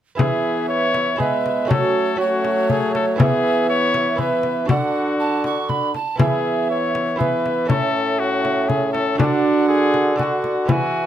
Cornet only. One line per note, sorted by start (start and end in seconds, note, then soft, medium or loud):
0.19 0.66 G#4 medium
0.68 1.21 C#5 loud
1.20 1.69 B4 medium
1.70 2.18 A4 medium
2.20 2.72 F#4 medium
2.70 2.94 G#4 medium
2.95 3.06 A4 medium
3.21 3.69 G#4 medium
3.70 4.22 C#5 loud
4.20 4.69 B4 medium
4.70 5.93 F#4 medium
6.20 6.67 G#4 medium
6.70 7.21 C#5 medium
7.19 7.68 B4 medium
7.69 8.21 A4 medium
8.19 8.70 F#4 medium
8.68 8.93 G#4 medium
8.93 9.18 A4 medium
9.19 9.68 D4 medium
9.68 10.19 G#4 loud
10.18 10.69 F#4 medium
10.69 11.06 F#4 medium